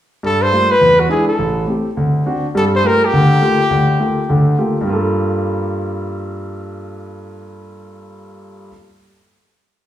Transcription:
0.23 grand piano G2, trumpet A4
0.42 trumpet C5
0.52 grand piano G3 A3 A#3 F4
0.71 trumpet B4
0.81 grand piano E2
1.00 trumpet F#4
1.09 grand piano G#3 D4 E4, trumpet G#4
1.28 trumpet A4
1.39 grand piano A1
1.67 grand piano A3 C4 G4
1.97 grand piano D2
2.26 grand piano C4 D4 F#4
2.55 grand piano G2 G3, trumpet A4
2.76 trumpet C5
2.84 grand piano A3 A#3 F4 G4, trumpet A#4
3.05 trumpet G4
3.13 grand piano D2 D3
3.41 grand piano A3 A#3 F4 G4
3.70 grand piano D2
4.00 grand piano A3 A#3 F4 G4
4.29 grand piano D2 D3
4.58 grand piano A3 A#3 F4 G4
4.81 grand piano G2 G3
4.87 grand piano A#3 F4
4.93 grand piano A4

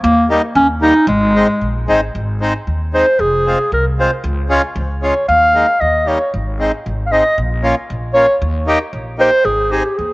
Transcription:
0.03 upright bass D#2, clarinet A#3
0.29 accordion G3 A#3 D#4
0.55 upright bass D#2, clarinet C#4
0.81 accordion G3 A#3 D#4, clarinet D#4
1.07 upright bass G#1, clarinet G#3
1.35 accordion G#3 C4 D#4
1.61 upright bass A#1
1.88 upright bass G#1, accordion G#3 C4 D#4
2.15 upright bass G#1
2.41 accordion G#3 C4 D#4
2.67 upright bass D#2
2.93 accordion G#3 C4 D#4, clarinet C5
3.19 upright bass F1, clarinet G#4
3.46 accordion G#3 C4 F4
3.72 upright bass C2, clarinet A#4
3.99 accordion G#3 C4 F4, clarinet C5
4.24 upright bass C#2
4.49 accordion G#3 C#4 F4
4.76 upright bass C#2
5.02 accordion G#3 C#4 F4, clarinet C#5
5.28 upright bass D#2, clarinet F5
5.54 accordion G#3 A#3 D#4
5.81 upright bass D#2, clarinet D#5
6.06 accordion G3 A#3 D#4, clarinet C#5
6.34 upright bass G#1
6.59 accordion G#3 C4 D#4
6.86 upright bass G#1
7.06 clarinet F5
7.12 accordion G#3 C4 D#4, clarinet D#5
7.38 upright bass A#1
7.63 accordion A#3 C#4 F4
7.90 upright bass A#1
8.14 accordion A#3 C#4 F4, clarinet C#5
8.42 upright bass D#2
8.67 accordion A#3 D#4 G4
8.93 upright bass A#1
9.19 accordion A#3 D#4 G4, clarinet C5
9.45 upright bass G#1, clarinet G#4
9.71 accordion C4 D#4 G#4, clarinet G4
9.98 upright bass D#2, clarinet G#4

